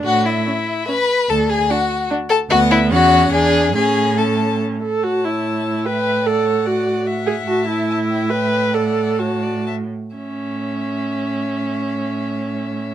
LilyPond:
<<
  \new Staff \with { instrumentName = "Violin" } { \time 3/4 \key a \major \tempo 4 = 143 fis''8 e''4. b''4 | a''8 gis''8 fis''4 r8 a''8 | fis''8 e''8 fis''4 gis''4 | gis''4 a''4 r4 |
a''2 g''4 | fis''2 fis''4 | a''4 a''8 g''8 g''4 | fis''4 a''4 a''8 r8 |
e''2.~ | e''2. | }
  \new Staff \with { instrumentName = "Violin" } { \time 3/4 \key a \major fis'8 e'4. b'4 | a'8 gis'8 fis'4 r8 a'8 | fis'8 e'8 fis'4 gis'4 | gis'4 a'4 r4 |
cis''2 e''4 | d''8 cis''8 d''4 e''4~ | e''4 e''2 | d''4 cis''8 d''8 e''8 r8 |
cis''2.~ | cis''2. | }
  \new Staff \with { instrumentName = "Viola" } { \time 3/4 \key a \major r4 cis'4 cis'4 | r4 d'4 d'4 | b4 cis'4 d'4 | cis'4 cis'4. a'8 |
fis'8 e'4. b'4 | a'4 fis'4 r8 gis'8 | fis'8 e'4. b'4 | a'4 fis'4 r4 |
cis'2.~ | cis'2. | }
  \new Staff \with { instrumentName = "Cello" } { \clef bass \time 3/4 \key a \major a,4 r2 | d,4 r2 | d,4 e,4 e,4 | a,2~ a,8 r8 |
a,2.~ | a,2. | a,2.~ | a,2~ a,8 r8 |
a,2.~ | a,2. | }
>>